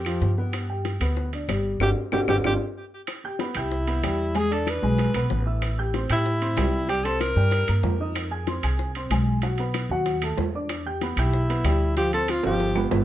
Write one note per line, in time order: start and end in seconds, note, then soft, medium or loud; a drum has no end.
0.00 0.18 F2 medium
0.00 0.35 G4 medium
0.05 0.32 F3 medium
0.05 0.32 F4 medium
0.05 high bongo soft
0.05 high timbale medium
0.05 claves medium
0.21 0.95 G2 medium
0.21 high bongo medium
0.21 low bongo medium
0.38 0.64 B3 medium
0.38 0.64 B4 medium
0.38 high bongo soft
0.53 high bongo medium
0.53 high timbale medium
0.53 claves medium
0.69 0.95 G4 medium
0.69 0.96 G5 medium
0.85 high bongo medium
0.85 high timbale medium
1.00 1.45 D2 medium
1.00 1.27 B3 medium
1.00 1.27 B4 medium
1.00 high timbale medium
1.00 claves medium
1.17 high bongo medium
1.33 1.46 D4 medium
1.33 1.46 D5 medium
1.33 high timbale medium
1.48 1.78 G1 medium
1.48 1.75 G3 medium
1.48 1.75 G4 medium
1.48 high bongo medium
1.48 low bongo medium
1.48 high timbale medium
1.48 claves medium
1.80 1.92 G1 medium
1.80 1.91 D4 medium
1.80 1.91 F#4 medium
1.80 1.91 G4 medium
1.80 1.90 G4 loud
1.80 high bongo medium
1.80 high timbale medium
1.80 claves medium
2.12 2.24 G1 medium
2.12 2.23 D4 medium
2.12 2.22 F#4 medium
2.12 2.23 G4 medium
2.12 2.21 G4 medium
2.12 high bongo loud
2.12 high timbale loud
2.12 claves medium
2.27 2.40 G1 medium
2.27 2.38 D4 medium
2.27 2.38 F#4 medium
2.27 2.38 G4 medium
2.27 2.37 G4 medium
2.27 high bongo medium
2.27 high timbale medium
2.27 claves loud
2.44 2.56 G1 medium
2.44 2.55 D4 medium
2.44 2.55 F4 medium
2.44 2.55 G4 medium
2.44 2.53 G4 medium
2.44 high bongo medium
2.44 high timbale medium
2.44 claves medium
3.07 high bongo medium
3.07 high timbale medium
3.07 claves medium
3.24 3.37 G4 medium
3.24 3.38 G5 medium
3.24 3.38 G6 medium
3.39 3.53 B3 medium
3.39 3.53 B4 medium
3.39 3.53 B5 medium
3.39 high bongo medium
3.39 high timbale medium
3.54 4.00 C2 medium
3.54 4.39 E4 medium
3.54 3.82 G4 medium
3.54 3.82 G5 medium
3.54 3.82 G6 medium
3.54 high timbale medium
3.54 claves medium
3.71 high bongo medium
3.87 4.00 B3 medium
3.87 4.01 B4 medium
3.87 4.01 B5 medium
3.87 high timbale medium
4.03 4.77 E2 medium
4.03 4.29 G3 medium
4.03 4.30 G4 medium
4.03 4.30 G5 medium
4.03 high bongo medium
4.03 low bongo medium
4.03 high timbale loud
4.03 claves medium
4.35 4.48 G#3 medium
4.35 4.48 G#4 medium
4.35 4.54 G#4 loud
4.35 4.48 G#5 medium
4.35 high bongo medium
4.35 high timbale medium
4.51 4.77 D4 medium
4.51 4.72 A4 medium
4.51 4.77 D5 medium
4.51 4.77 D6 medium
4.51 high bongo soft
4.51 high timbale medium
4.67 5.48 B4 loud
4.67 high bongo medium
4.67 high timbale medium
4.67 claves medium
4.82 5.12 B1 medium
4.82 5.09 G#3 medium
4.82 5.09 G#4 medium
4.82 5.09 G#5 medium
4.98 high bongo medium
4.98 high timbale medium
5.14 5.29 B1 medium
5.14 5.41 B3 medium
5.14 5.41 B4 medium
5.14 5.42 B5 medium
5.14 high bongo soft
5.14 high timbale medium
5.14 claves medium
5.30 6.04 A1 medium
5.30 high bongo medium
5.30 low bongo medium
5.46 5.72 E4 medium
5.46 5.72 E5 medium
5.46 5.73 E6 medium
5.46 high bongo soft
5.62 high bongo medium
5.62 high timbale medium
5.62 claves medium
5.78 5.91 G4 medium
5.78 5.91 G5 medium
5.78 5.92 G6 medium
5.94 6.07 C4 medium
5.94 6.07 C5 medium
5.94 6.08 C6 medium
5.94 high bongo medium
5.94 high timbale medium
6.09 6.54 A2 medium
6.09 6.86 E4 medium
6.09 6.36 G4 medium
6.09 6.36 G5 medium
6.09 6.36 G6 medium
6.09 high timbale medium
6.09 claves medium
6.26 high bongo medium
6.41 6.54 C4 medium
6.41 6.55 C5 medium
6.41 6.55 C6 medium
6.41 high timbale medium
6.57 7.31 C2 medium
6.57 6.83 G3 medium
6.57 6.83 G4 medium
6.57 6.84 G5 medium
6.57 high bongo medium
6.57 low bongo medium
6.57 high timbale medium
6.57 low timbale medium
6.57 claves medium
6.89 7.02 G3 medium
6.89 7.02 G4 medium
6.89 7.06 G4 loud
6.89 7.02 G5 medium
6.89 high bongo medium
6.89 high timbale medium
7.04 7.31 C4 medium
7.04 7.22 A4 loud
7.04 7.31 C5 medium
7.04 7.31 C6 medium
7.04 high bongo soft
7.04 high timbale medium
7.20 8.00 A#4 loud
7.20 high bongo medium
7.20 high timbale medium
7.20 claves medium
7.36 7.66 G2 loud
7.36 7.62 G3 medium
7.36 7.63 G4 medium
7.36 7.63 G5 medium
7.51 high bongo medium
7.51 high timbale medium
7.68 7.83 G2 medium
7.68 7.94 A#3 medium
7.68 7.94 A#4 medium
7.68 7.95 A#5 medium
7.68 high bongo soft
7.68 high timbale medium
7.68 claves medium
7.83 8.58 F2 medium
7.83 high bongo medium
7.83 low bongo medium
7.83 low timbale medium
8.00 8.26 D#4 medium
8.00 8.26 D#5 medium
8.00 8.26 D#6 medium
8.00 high bongo soft
8.15 high bongo medium
8.15 high timbale medium
8.15 claves medium
8.31 8.44 G#4 medium
8.31 8.45 G#5 medium
8.31 8.45 G#6 medium
8.47 8.60 C4 medium
8.47 8.61 C5 medium
8.47 8.61 C6 medium
8.47 high bongo medium
8.47 high timbale medium
8.63 9.08 C2 medium
8.63 8.90 G#4 medium
8.63 8.90 G#5 medium
8.63 8.90 G#6 medium
8.63 high timbale medium
8.63 claves medium
8.79 high bongo medium
8.95 9.09 C4 medium
8.95 9.09 C5 medium
8.95 9.09 C6 medium
8.95 high timbale medium
9.10 9.84 B1 medium
9.10 9.37 G#3 medium
9.10 9.37 G#4 medium
9.10 9.37 G#5 medium
9.10 high bongo medium
9.10 low bongo medium
9.10 high timbale medium
9.10 claves medium
9.42 9.56 F#3 medium
9.42 9.56 F#4 medium
9.42 9.56 F#5 medium
9.42 high bongo medium
9.42 high timbale medium
9.58 9.85 B3 medium
9.58 9.85 B4 medium
9.58 9.85 B5 medium
9.58 high bongo soft
9.58 high timbale medium
9.74 high bongo medium
9.74 high timbale medium
9.74 claves medium
9.89 10.34 D#2 medium
9.89 10.17 F#3 medium
9.89 10.17 F#4 medium
9.89 10.17 F#5 medium
10.06 high bongo medium
10.06 high timbale medium
10.22 10.49 A3 medium
10.22 10.49 A4 medium
10.22 10.49 A5 medium
10.22 high bongo soft
10.22 high timbale medium
10.22 claves medium
10.38 11.12 E2 medium
10.38 high bongo medium
10.38 low bongo medium
10.38 low timbale medium
10.54 10.81 D4 medium
10.54 10.81 D5 medium
10.54 10.81 D6 medium
10.54 high bongo soft
10.69 high bongo medium
10.69 high timbale medium
10.69 claves medium
10.86 10.99 G4 medium
10.86 10.99 G5 medium
10.86 10.99 G6 medium
11.01 11.15 B3 medium
11.01 11.15 B4 medium
11.01 11.15 B5 medium
11.01 high bongo medium
11.01 high timbale medium
11.16 11.61 B1 loud
11.16 11.93 E4 medium
11.16 11.44 G4 medium
11.16 11.44 G5 medium
11.16 11.44 G6 medium
11.16 high timbale medium
11.16 claves medium
11.33 high bongo medium
11.49 11.62 B3 medium
11.49 11.62 B4 medium
11.49 11.63 B5 medium
11.49 high timbale medium
11.64 12.38 D2 medium
11.64 11.91 G3 medium
11.64 11.91 G4 medium
11.64 11.91 G5 medium
11.64 high bongo medium
11.64 low bongo medium
11.64 high timbale medium
11.64 claves medium
11.97 12.10 F3 medium
11.97 12.10 F4 medium
11.97 12.12 G4 loud
11.97 12.10 F5 medium
11.97 high bongo medium
11.97 high timbale medium
12.13 12.39 C4 medium
12.13 12.32 A4 loud
12.13 12.39 C5 medium
12.13 12.39 C6 medium
12.13 high bongo soft
12.13 high timbale medium
12.28 12.45 F4 medium
12.28 high bongo medium
12.28 high timbale medium
12.28 claves medium
12.43 12.88 G1 medium
12.43 12.71 F3 medium
12.43 12.71 F4 medium
12.43 12.90 G4 loud
12.43 12.71 F5 medium
12.43 high timbale medium
12.60 high bongo medium
12.76 13.02 B3 medium
12.76 13.03 B4 medium
12.76 13.03 B5 medium
12.76 high bongo soft
12.76 low timbale medium
12.76 claves medium
12.91 13.04 G1 medium
12.91 high bongo medium
12.91 low bongo medium
12.91 low timbale loud